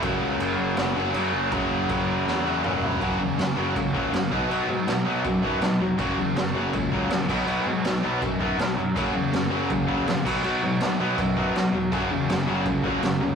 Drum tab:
CC |x-x-x-x-|x-x-----|x-x-x-x-|x-x-x-x-|
SD |----o---|----o---|--o---o-|--o---o-|
T2 |--------|------o-|--------|--------|
FT |--------|-------o|--------|--------|
BD |o-------|o-o-----|o---oo-o|----oo--|

CC |x-x-x-xx|x-x-x-x-|x-x-x-xx|x-x-x-x-|
SD |--o---o-|--o---o-|--o---o-|--o---o-|
T2 |--------|--------|--------|--------|
FT |--------|--------|--------|--------|
BD |o---oo-o|----oo--|o---oo-o|----oo--|

CC |x-x-x-x-|
SD |--o---o-|
T2 |--------|
FT |--------|
BD |o---oo--|